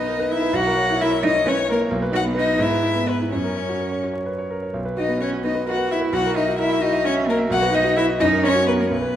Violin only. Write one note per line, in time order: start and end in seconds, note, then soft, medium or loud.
0.00 0.33 D#5 loud
0.31 0.57 E5 loud
0.56 1.03 F#5 loud
1.02 1.24 E5 loud
1.26 1.49 D#5 loud
1.48 1.70 C#5 loud
1.72 1.80 A#4 loud
2.16 2.24 F#5 loud
2.39 2.64 D#5 loud
2.62 3.10 E5 loud
3.09 3.31 B4 loud
3.32 4.02 C#5 medium
4.98 5.20 D#5 loud
5.21 5.29 C#5 loud
5.45 5.67 D#5 loud
5.70 5.91 F#5 loud
5.92 6.00 E5 loud
6.14 6.35 F#5 loud
6.36 6.58 D#5 loud
6.59 6.83 E5 loud
6.81 7.05 D#5 loud
7.06 7.14 C#5 loud
7.30 7.38 A#4 loud
7.52 7.76 F#5 loud
7.75 7.97 D#5 loud
7.97 8.05 E5 loud
8.21 8.29 D#5 loud
8.45 8.67 C#5 loud
8.67 8.72 B4 loud
8.81 8.90 A#4 medium
8.91 9.16 B4 loud